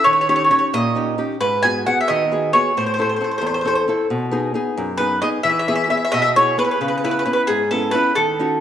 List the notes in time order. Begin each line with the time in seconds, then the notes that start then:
0.04 D#3 C#5
0.13 C#5
0.21 C#5
0.29 C#4 D#4 G4 C#5
0.36 C#5
0.44 C#5
0.50 C#4 D#4 G4 C#5
0.59 C#5
0.73 A#2 D#5
0.95 C#4 D#4 G4
1.18 C#4 D#4 G4
1.41 G#2 B4
1.63 B3 F#4 G#4 G#5
1.86 B3 F#4 G#4 F#5
2.01 E5
2.08 D#3 D#5
2.32 B3 F#4 G#4
2.53 B3 F#4 G#4 C#5
2.77 A2 C5
2.86 C5
2.94 C5
2.99 C4 E4 A4 C5
3.09 C5
3.16 C5
3.21 C4 E4 A4 C5
3.31 C5
3.38 E2 C5
3.47 C5
3.54 C5
3.61 C4 C5
3.65 E4 A4 C5
3.75 C5
3.88 C4 E4 A4
4.10 B2
4.31 B3 D#4 G#4
4.54 B3 D#4 G#4
4.77 F#2
4.98 B3 D#4 G#4 B4
5.22 B3 D#4 G#4 D#5
5.43 E3 E5
5.49 E5
5.59 E5
5.68 B3 E4 G#4 E5
5.75 E5
5.84 E5
5.90 B3 E4 G#4 E5
5.97 E5
6.05 E5
6.12 B2 D#5 E5
6.22 E5
6.36 B3 E4 G#4 C#5
6.58 B3 E4 G#4 B4
6.64 B4
6.71 B4
6.81 C#3 B4
6.88 B4
6.97 B4
7.04 B3 C#4 E4 B4
7.11 B4
7.19 B4
7.25 B3 C#4 E4 B4
7.33 B4
7.47 G#2 G#4
7.71 B3 C#4 E4 A4
7.91 B3 C#4 E4 B4
8.15 D#3 A4
8.39 C#4 D#4 F#4